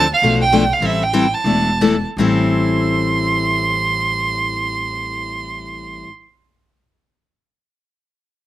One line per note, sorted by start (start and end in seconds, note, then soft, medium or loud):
0.00 0.11 D2 medium
0.00 0.10 A5 loud
0.14 0.39 F5 medium
0.22 0.69 B1 medium
0.22 0.42 B2 medium
0.22 0.42 F3 medium
0.22 0.43 A3 medium
0.22 0.43 D4 medium
0.22 0.43 A4 medium
0.42 0.74 G5 medium
0.52 0.63 B2 medium
0.52 0.63 F3 medium
0.52 0.63 A3 medium
0.52 0.63 D4 medium
0.52 0.63 A4 medium
0.73 0.87 F5 medium
0.80 1.32 A1 medium
0.80 1.03 E3 medium
0.80 1.03 G3 medium
0.80 1.03 C4 medium
0.80 1.03 E4 medium
0.80 1.03 A4 medium
0.86 1.05 E5 medium
1.03 1.36 G5 medium
1.13 1.25 E3 medium
1.13 1.25 G3 medium
1.13 1.25 C4 medium
1.13 1.25 E4 medium
1.13 1.25 A4 medium
1.35 2.03 A5 medium
1.44 2.03 E1 medium
1.44 1.69 E3 medium
1.44 1.69 A3 medium
1.44 1.69 D4 medium
1.44 1.69 E4 medium
1.44 1.69 A4 medium
1.81 1.95 E3 medium
1.81 1.95 A3 medium
1.81 1.95 D4 medium
1.81 1.95 E4 medium
1.81 1.95 A4 medium
2.17 6.02 A1 medium
2.17 6.07 A2 medium
2.17 6.08 E3 medium
2.17 6.08 G3 medium
2.17 6.09 C4 medium
2.17 6.09 E4 medium
2.21 6.10 A4 medium
2.21 6.06 C6 medium